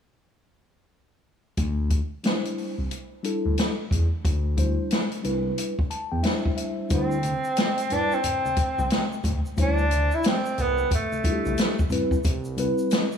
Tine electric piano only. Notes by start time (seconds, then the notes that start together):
2.24 G3 D4 E4 B4
2.32 C5
3.23 G3 D4 E4 A4
4.56 G3 D4 E4 C5
5.22 G3 D4 E4 B4
5.91 A5
6.12 G5
6.22 G3 D4 E4 C5 E5
6.57 E5
6.89 G3 D4 E4 C5
7.90 G3 D4 E4 B4
9.57 G3 D4 E4 C5
11.23 G3 D4 E4 F4
11.32 G4
11.90 G3 C4 E4 B4
12.57 G3 C4 E4 B4